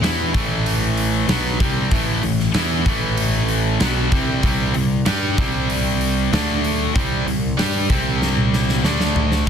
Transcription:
0.01 picked electric bass E2, distorted electric guitar E3 B3 E4, snare, open hi-hat
0.33 picked electric bass A1, distorted electric guitar A2 E3 A3, kick, open hi-hat
0.66 open hi-hat
0.97 open hi-hat
1.28 picked electric bass B1, distorted electric guitar B2 F#3 B3, snare, open hi-hat
1.45 snare
1.60 picked electric bass C2, distorted electric guitar C3 G3 C4, kick, open hi-hat
1.91 picked electric bass A1, distorted electric guitar A2 E3 A3, kick, open hi-hat
2.23 picked electric bass A1, distorted electric guitar A2 E3, open hi-hat
2.40 snare
2.54 picked electric bass E2, distorted electric guitar E3 B3 E4, snare, open hi-hat
2.86 picked electric bass A1, distorted electric guitar A2 E3 A3, kick, open hi-hat
3.17 open hi-hat
3.48 open hi-hat
3.80 picked electric bass B1, distorted electric guitar B2 F#3 B3, snare, open hi-hat
4.12 picked electric bass C2, distorted electric guitar C3 G3 C4, kick, open hi-hat
4.43 picked electric bass C2, distorted electric guitar C3 G3 C4, kick, open hi-hat
4.74 picked electric bass C2, distorted electric guitar C3 G3, open hi-hat
5.06 picked electric bass G2, distorted electric guitar G3 D4 G4, snare, open hi-hat
5.37 picked electric bass C2, distorted electric guitar C3 G3 C4, kick, open hi-hat
5.70 open hi-hat
6.01 open hi-hat
6.32 picked electric bass D2, distorted electric guitar D3 A3 D4, snare, open hi-hat
6.64 open hi-hat
6.95 picked electric bass C2, distorted electric guitar C3 G3 C4, kick, open hi-hat
7.26 picked electric bass C2, distorted electric guitar C3 G3, open hi-hat
7.57 picked electric bass G2, distorted electric guitar G3 D4 G4, snare, open hi-hat
7.89 picked electric bass C2, distorted electric guitar C3 G3 C4, kick, open hi-hat
8.22 snare
8.37 high tom
8.54 snare
8.69 snare
8.83 picked electric bass D2, distorted electric guitar D3 A3 D4, snare
9.00 snare
9.16 floor tom
9.32 snare

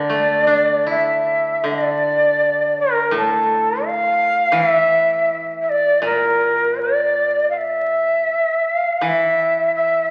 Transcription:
Already playing: koto D3, shakuhachi D5
0.10 koto A3
0.47 koto D4
0.87 koto E4, shakuhachi E5
1.64 koto D3, shakuhachi D5
2.79 shakuhachi A#4
3.11 koto A2
3.16 shakuhachi A4
3.85 shakuhachi F5
4.52 koto E3
4.56 shakuhachi E5
5.61 shakuhachi E5
5.69 shakuhachi D5
6.02 koto A#2, shakuhachi A#4
6.79 shakuhachi D5
7.50 shakuhachi F5
7.57 shakuhachi E5
8.68 shakuhachi F5
8.97 shakuhachi F5
9.01 koto E3
9.07 shakuhachi E5
9.74 shakuhachi E5

